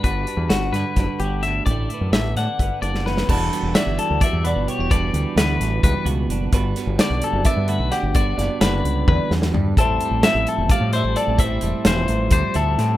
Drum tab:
CC |--------------|--------------|x-------------|--------------|
HH |x-x-x-x-x-x-x-|x-x-x-x-x-x---|--x-x-x-x-x-x-|x-x-x-x-x-x-x-|
SD |----o-o-o---o-|----o-o----ooo|----o---------|----o-o-------|
T1 |--------------|--------------|--------------|--------------|
FT |--------------|--------------|--------------|--------------|
BD |o-------o-----|o-------o-----|o-------o-----|o-------o-----|

CC |--------------|--------------|--------------|--------------|
HH |x-x-x-x-x-x-x-|x-x-x-x-------|x-x-x-x-x-x-x-|x-x-x-x-x-x-x-|
SD |--o-o-------o-|--o-o-----oo--|----o-----o---|----o-------o-|
T1 |--------------|--------o-----|--------------|--------------|
FT |--------------|------------o-|--------------|--------------|
BD |o-------o-----|o-------o-----|o-------o-----|o-------o-----|